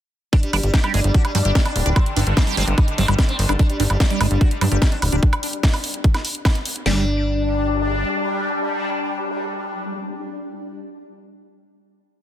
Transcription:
0.33 5.27 G3 medium
0.33 0.37 G3 medium
0.33 0.39 D4 loud
0.33 5.27 D4 medium
0.33 kick loud
0.33 closed hi-hat medium
0.43 0.49 G3 medium
0.43 closed hi-hat medium
0.53 0.60 G1 loud
0.53 0.60 G3 medium
0.53 0.57 D4 medium
0.53 open hi-hat loud
0.53 high woodblock soft
0.63 0.70 G1 medium
0.63 0.70 G3 medium
0.63 closed hi-hat medium
0.74 0.80 G3 medium
0.74 0.80 D4 medium
0.74 kick loud
0.74 snare loud
0.74 closed hi-hat medium
0.84 0.90 G3 medium
0.84 0.93 G3 medium
0.84 closed hi-hat medium
0.84 high woodblock medium
0.94 1.01 G1 medium
0.94 1.00 G#3 medium
0.94 1.00 D4 medium
0.94 open hi-hat loud
1.04 1.11 G1 medium
1.04 1.11 G3 medium
1.04 closed hi-hat medium
1.14 1.21 F#4 medium
1.14 kick loud
1.14 closed hi-hat medium
1.25 1.31 G3 medium
1.25 closed hi-hat medium
1.25 high woodblock soft
1.35 1.42 G2 loud
1.35 1.39 F#3 medium
1.35 1.41 D4 medium
1.35 open hi-hat loud
1.45 1.52 G1 medium
1.45 1.51 G3 medium
1.45 closed hi-hat medium
1.55 1.61 G3 medium
1.55 kick loud
1.55 snare loud
1.55 closed hi-hat medium
1.65 1.72 D4 loud
1.65 closed hi-hat medium
1.65 high woodblock soft
1.76 1.83 D1 loud
1.76 1.82 G3 medium
1.76 open hi-hat loud
1.86 1.93 D1 medium
1.86 1.92 G3 medium
1.86 1.90 D4 medium
1.86 closed hi-hat medium
1.96 2.00 G3 medium
1.96 2.03 C4 loud
1.96 kick loud
1.96 closed hi-hat medium
1.96 high woodblock medium
2.06 2.13 D3 medium
2.06 closed hi-hat medium
2.16 2.23 G1 loud
2.16 2.23 D3 medium
2.16 2.20 D4 medium
2.16 open hi-hat loud
2.27 2.34 G1 medium
2.27 2.33 D3 medium
2.27 closed hi-hat medium
2.37 2.43 G3 medium
2.37 2.43 C4 medium
2.37 kick loud
2.37 snare loud
2.37 closed hi-hat medium
2.37 high woodblock soft
2.47 2.54 D3 medium
2.47 2.56 G3 medium
2.47 open hi-hat medium
2.57 2.64 G1 medium
2.57 2.63 G#3 medium
2.57 2.64 C4 medium
2.57 open hi-hat loud
2.67 2.74 G1 medium
2.67 2.74 D3 medium
2.67 closed hi-hat medium
2.78 2.84 D#4 medium
2.78 kick loud
2.78 closed hi-hat medium
2.78 high woodblock soft
2.88 2.94 D3 medium
2.88 closed hi-hat medium
2.98 3.05 G1 loud
2.98 3.02 F#3 medium
2.98 3.05 C4 medium
2.98 open hi-hat loud
3.08 3.15 G1 medium
3.08 3.15 D3 medium
3.08 3.14 G3 medium
3.08 closed hi-hat medium
3.08 high woodblock medium
3.19 3.25 D3 medium
3.19 3.25 G3 medium
3.19 kick loud
3.19 snare loud
3.19 closed hi-hat medium
3.29 3.35 C4 loud
3.29 closed hi-hat medium
3.39 3.46 G1 medium
3.39 3.45 D3 medium
3.39 open hi-hat loud
3.49 3.56 G1 medium
3.49 3.56 D3 medium
3.49 3.53 D4 medium
3.49 closed hi-hat medium
3.49 high woodblock soft
3.59 3.63 G3 medium
3.59 3.66 D4 loud
3.59 kick loud
3.59 closed hi-hat medium
3.70 3.76 G3 medium
3.70 closed hi-hat medium
3.80 3.87 G1 loud
3.80 3.86 G3 medium
3.80 3.83 D4 medium
3.80 open hi-hat loud
3.90 3.97 G1 medium
3.90 3.96 G3 medium
3.90 closed hi-hat medium
3.90 high woodblock soft
4.00 4.06 G3 medium
4.00 4.07 D4 medium
4.00 kick loud
4.00 snare loud
4.00 closed hi-hat medium
4.10 4.20 G3 medium
4.10 4.17 G3 medium
4.10 closed hi-hat medium
4.21 4.27 G1 medium
4.21 4.27 G#3 medium
4.21 4.27 D4 medium
4.21 open hi-hat loud
4.21 high woodblock medium
4.31 4.38 G1 medium
4.31 4.37 G3 medium
4.31 closed hi-hat medium
4.41 4.47 F#4 medium
4.41 kick loud
4.41 closed hi-hat medium
4.51 4.58 G3 medium
4.51 closed hi-hat medium
4.61 4.68 G2 medium
4.61 4.65 F#3 medium
4.61 4.68 D4 medium
4.61 open hi-hat loud
4.61 high woodblock soft
4.72 4.78 G1 medium
4.72 4.78 G3 medium
4.72 closed hi-hat medium
4.82 4.88 G3 medium
4.82 kick loud
4.82 snare loud
4.82 closed hi-hat medium
4.92 4.98 D4 loud
4.92 closed hi-hat medium
5.02 5.09 D1 medium
5.02 5.09 G3 medium
5.02 open hi-hat loud
5.02 high woodblock soft
5.12 5.19 D1 medium
5.12 5.19 G3 medium
5.12 5.16 D4 medium
5.12 closed hi-hat medium
5.23 kick loud
5.23 closed hi-hat medium
5.33 closed hi-hat medium
5.33 high woodblock medium
5.43 open hi-hat loud
5.53 closed hi-hat medium
5.63 kick loud
5.63 snare loud
5.63 closed hi-hat medium
5.74 open hi-hat medium
5.74 high woodblock soft
5.84 open hi-hat loud
5.94 closed hi-hat medium
6.04 kick loud
6.04 closed hi-hat medium
6.14 snare soft
6.14 closed hi-hat medium
6.14 high woodblock soft
6.25 open hi-hat loud
6.35 closed hi-hat medium
6.45 kick loud
6.45 snare loud
6.45 closed hi-hat medium
6.45 high woodblock medium
6.55 closed hi-hat medium
6.66 open hi-hat loud
6.76 closed hi-hat medium
6.86 8.04 G1 loud
6.86 10.45 G3 medium
6.86 7.05 G3 loud
6.86 10.45 D4 medium
6.86 10.45 D4 loud
6.86 snare loud
6.86 open hi-hat medium

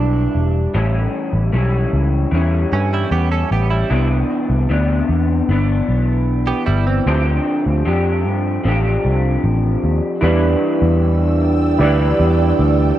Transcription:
0.00 0.27 B1 medium
0.00 0.74 G3 medium
0.00 0.70 D4 medium
0.00 0.74 D4 medium
0.00 0.75 E4 medium
0.00 0.76 B4 medium
0.35 0.66 E1 medium
0.74 1.06 A1 medium
0.74 1.53 A2 medium
0.74 1.52 E3 medium
0.74 1.53 G3 medium
0.74 1.53 C#4 medium
0.74 1.55 E4 medium
1.33 1.49 A1 medium
1.52 1.85 B1 medium
1.52 2.31 E3 medium
1.52 2.34 G3 medium
1.52 2.32 C#4 medium
1.52 2.36 E4 medium
1.93 2.24 C#2 medium
2.31 2.64 E2 medium
2.31 3.89 E3 medium
2.31 3.90 G3 medium
2.31 3.90 C#4 medium
2.36 3.91 E4 medium
2.72 3.04 G2 medium
2.72 2.92 E3 medium
2.72 2.91 C#4 medium
2.93 3.11 G3 medium
2.93 3.11 E4 medium
3.11 3.43 E2 medium
3.11 3.30 B3 medium
3.11 3.30 G4 medium
3.31 3.50 C#4 medium
3.31 3.50 A4 medium
3.51 3.83 A1 medium
3.51 3.70 B3 medium
3.51 3.70 G4 medium
3.70 4.08 G3 medium
3.70 4.08 E4 medium
3.90 4.22 C2 medium
3.90 4.68 C3 medium
3.90 4.69 E3 medium
3.90 4.69 B3 medium
3.90 4.71 D4 medium
4.50 4.65 C2 medium
4.69 5.01 D2 medium
4.69 5.48 C3 medium
4.69 5.48 E3 medium
4.69 5.49 B3 medium
4.69 5.51 D4 medium
5.09 5.41 E2 medium
5.49 5.80 G1 loud
5.49 7.07 E3 medium
5.49 7.07 B3 medium
5.49 7.07 D4 medium
5.89 6.51 B1 medium
6.47 6.66 B3 medium
6.47 6.66 G4 medium
6.66 6.99 G1 medium
6.66 6.85 G3 medium
6.66 6.85 E4 medium
6.86 7.24 E3 medium
6.86 7.24 C4 medium
7.07 7.38 D2 medium
7.07 7.88 D3 medium
7.07 7.84 F3 medium
7.07 7.84 C4 medium
7.07 7.86 D4 medium
7.07 7.87 G4 medium
7.66 7.82 D2 medium
7.85 8.26 F2 medium
7.85 8.62 F3 medium
7.85 8.64 C4 medium
7.85 8.67 D4 medium
7.85 8.66 G4 medium
8.26 8.57 G2 medium
8.63 8.96 A1 medium
8.63 10.22 F3 medium
8.63 10.23 C4 medium
8.63 10.23 D4 medium
8.68 10.24 G4 medium
9.05 9.36 C2 medium
9.44 9.75 A1 medium
9.84 9.99 D#2 medium
10.21 10.54 E2 loud
10.21 11.80 E3 medium
10.21 11.81 G3 medium
10.21 11.81 D4 medium
10.21 11.38 E4 medium
10.21 11.82 E4 medium
10.21 11.38 G4 medium
10.21 11.39 B4 medium
10.21 11.81 B4 loud
10.21 12.99 D5 medium
10.21 11.39 D5 medium
10.21 12.99 G5 medium
10.21 12.99 E6 medium
10.82 11.76 E2 medium
11.79 12.11 D2 loud
11.79 12.99 E3 medium
11.79 12.99 G3 medium
11.79 12.99 D4 medium
11.79 12.96 E4 medium
11.79 12.99 E4 medium
11.79 12.96 G4 medium
11.79 12.97 B4 medium
11.79 12.97 D5 medium
11.83 12.99 B4 loud
12.20 12.51 E2 loud
12.59 12.91 D2 loud

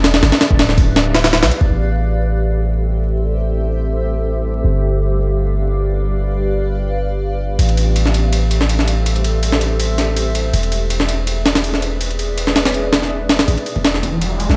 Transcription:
0.00 0.21 E1 medium
0.00 0.21 G#4 medium
0.00 0.21 B4 medium
0.00 0.21 D5 medium
0.00 0.18 E5 medium
0.04 snare loud
0.04 ride medium
0.14 snare loud
0.14 ride medium
0.23 0.31 G1 loud
0.23 1.68 G4 medium
0.23 1.68 B4 medium
0.23 1.68 D5 medium
0.23 1.68 F5 medium
0.23 snare loud
0.23 ride medium
0.32 snare loud
0.32 ride medium
0.41 snare loud
0.41 ride medium
0.51 1.44 D1 medium
0.51 kick loud
0.59 snare loud
0.59 ride medium
0.69 snare medium
0.78 kick loud
0.78 ride medium
0.96 snare loud
0.96 ride medium
1.15 snare loud
1.15 ride medium
1.24 snare loud
1.24 ride medium
1.33 snare loud
1.33 ride medium
1.43 1.51 B1 medium
1.43 snare loud
1.43 ride medium
1.51 ride medium
1.61 kick medium
1.70 4.62 A1 medium
1.70 10.49 G4 medium
1.70 4.61 A4 medium
1.70 4.61 C5 medium
1.70 4.61 E5 medium
4.64 7.57 G1 medium
4.64 7.56 B4 medium
4.64 7.56 D5 medium
4.64 7.56 F5 medium
7.59 10.52 A1 medium
7.59 10.50 A4 medium
7.59 10.50 C5 medium
7.59 13.44 E5 medium
7.59 ride medium
7.69 ride soft
7.77 ride medium
7.96 ride medium
8.06 snare soft
8.14 ride medium
8.33 ride medium
8.51 ride medium
8.61 snare soft
8.69 ride medium
8.79 snare soft
8.88 ride medium
9.06 ride medium
9.16 ride soft
9.24 ride medium
9.43 ride medium
9.52 snare soft
9.61 ride medium
9.80 ride medium
9.98 snare soft
9.98 ride medium
10.17 ride medium
10.35 ride medium
10.53 13.46 E1 medium
10.53 13.45 G#4 medium
10.53 13.45 B4 medium
10.53 13.45 D5 medium
10.53 ride medium
10.63 ride soft
10.72 ride medium
10.90 ride medium
11.00 snare soft
11.09 ride medium
11.27 ride medium
11.46 snare medium
11.46 ride medium
11.55 snare loud
11.55 ride medium
11.64 ride medium
11.74 snare soft
11.82 ride medium
12.01 ride medium
12.10 ride soft
12.19 ride medium
12.38 ride medium
12.47 snare soft
12.56 snare loud
12.56 ride medium
12.65 snare medium
12.65 ride medium
12.74 ride medium
12.93 snare medium
12.93 ride medium
13.02 snare soft
13.29 snare loud
13.29 ride medium
13.39 snare loud
13.39 ride medium
13.47 13.57 A1 medium
13.47 14.57 G4 medium
13.47 14.57 A4 medium
13.47 14.57 C5 medium
13.47 14.57 E5 medium
13.47 kick loud
13.47 ride medium
13.47 riser medium
13.58 ride soft
13.66 ride medium
13.76 14.48 E1 medium
13.76 kick medium
13.85 snare loud
13.85 ride medium
13.94 snare soft
14.03 kick medium
14.03 ride medium
14.21 ride medium
14.40 ride medium
14.49 14.57 A1 medium
14.49 snare soft

